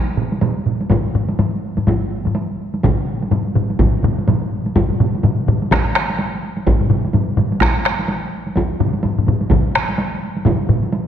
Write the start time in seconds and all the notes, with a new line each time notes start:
0.17 taiko mid
0.32 taiko high
0.41 taiko mid, taiko high
0.66 taiko mid
0.81 taiko high
0.90 taiko, taiko low-mid, taiko high
1.15 taiko low-mid
1.28 taiko high
1.39 taiko low-mid, taiko high
1.77 taiko low-mid, taiko high
1.87 taiko, taiko low-mid, taiko high
2.25 taiko low-mid, taiko high
2.35 taiko high
2.74 taiko high
2.83 taiko, taiko low-mid, taiko mid, taiko high
3.23 taiko high
3.31 taiko low-mid, taiko mid, taiko high
3.55 taiko low-mid, taiko mid
3.70 taiko high
3.79 taiko, taiko low-mid, taiko mid, taiko high
4.03 taiko low-mid, taiko mid
4.18 taiko high
4.28 taiko low-mid, taiko mid, taiko high
4.42 taiko high
4.66 taiko high
4.75 taiko, taiko low-mid, taiko mid, taiko high
4.90 taiko low-mid, taiko mid
5.00 taiko low-mid, taiko mid
5.15 taiko high
5.23 taiko low-mid, taiko mid, taiko high
5.47 taiko low-mid, taiko mid, taiko high
5.62 taiko high
5.71 taiko rim, taiko, taiko high
5.95 taiko rim
6.10 taiko high
6.19 taiko high
6.57 taiko high
6.67 taiko, taiko low-mid, taiko mid, taiko high
6.81 taiko low-mid, taiko mid
6.90 taiko low-mid, taiko mid
7.05 taiko high
7.13 taiko low-mid, taiko mid, taiko high
7.37 taiko low-mid, taiko mid, taiko high
7.52 taiko high
7.61 taiko rim, taiko, taiko high
7.85 taiko rim
7.99 taiko high
8.08 taiko high
8.47 taiko high
8.56 taiko, taiko high
8.80 taiko low-mid, taiko mid
8.93 taiko high
9.03 taiko low-mid, taiko mid, taiko high
9.18 taiko low-mid, taiko mid
9.27 taiko low-mid, taiko mid, taiko high
9.41 taiko high
9.50 taiko, taiko low-mid, taiko mid, taiko high
9.75 taiko rim
9.89 taiko high
9.98 taiko high
10.37 taiko high
10.45 taiko, taiko low-mid, taiko mid, taiko high
10.69 taiko low-mid, taiko mid
10.83 taiko high
10.93 taiko high